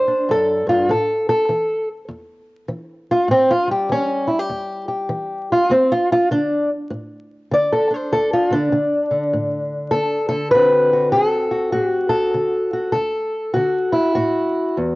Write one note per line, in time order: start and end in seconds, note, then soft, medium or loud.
0.00 0.24 A2 medium
0.00 0.30 C5 medium
0.08 0.87 D4 soft
0.29 0.66 F#2 medium
0.29 0.68 A4 loud
0.67 0.89 G2 medium
0.67 0.90 F4 medium
0.89 1.45 A2 medium
0.89 1.28 A4 medium
1.29 1.88 A4 medium
1.49 2.05 E3 medium
2.08 2.64 E2 medium
2.68 3.24 E3 medium
3.11 3.30 F4 medium
3.28 3.84 A2 medium
3.28 3.50 C4 medium
3.51 3.70 F4 loud
3.68 5.70 G3 soft
3.68 3.90 G4 medium
3.89 4.45 E3 medium
3.89 4.29 C#4 loud
4.27 4.39 E4 soft
4.39 4.87 G4 soft
4.49 5.05 E2 medium
4.88 5.50 G4 soft
5.09 5.65 E3 medium
5.52 5.71 F4 medium
5.70 6.26 D2 medium
5.70 5.91 C4 loud
5.92 6.11 F4 medium
6.12 6.31 F4 medium
6.31 6.86 D3 medium
6.31 6.69 D4 loud
6.90 7.46 A2 medium
7.51 8.07 D3 medium
7.51 7.72 D5 loud
7.73 7.92 A4 loud
7.91 8.52 D4 soft
7.91 8.13 C5 loud
8.12 8.68 D2 medium
8.12 8.32 A4 medium
8.33 8.52 F4 medium
8.51 8.71 D3 soft
8.51 10.33 D4 medium
8.72 9.10 D3 medium
9.11 9.92 D3 soft
9.33 9.88 A2 medium
9.91 10.30 D3 medium
9.91 10.27 A4 loud
10.29 10.53 D3 medium
10.29 10.51 A4 loud
10.51 11.09 D2 medium
10.51 11.14 D3 medium
10.51 12.93 C4 medium
10.51 10.92 F#4 medium
10.51 11.12 B4 loud
10.93 11.51 F#4 soft
11.12 11.70 D3 medium
11.12 11.29 G#4 medium
11.29 11.88 A4 medium
11.51 11.72 F#4 soft
11.72 12.30 A2 medium
11.72 12.72 F#4 medium
11.88 12.08 G4 medium
12.09 12.91 A4 medium
12.34 12.90 D3 medium
12.73 12.93 F#4 soft
12.92 13.51 D2 medium
12.92 13.92 A4 medium
13.54 14.12 D3 medium
13.54 14.14 F#4 medium
13.92 14.76 E4 medium
14.15 14.72 A2 medium
14.15 14.95 F#4 medium
14.77 14.95 E2 medium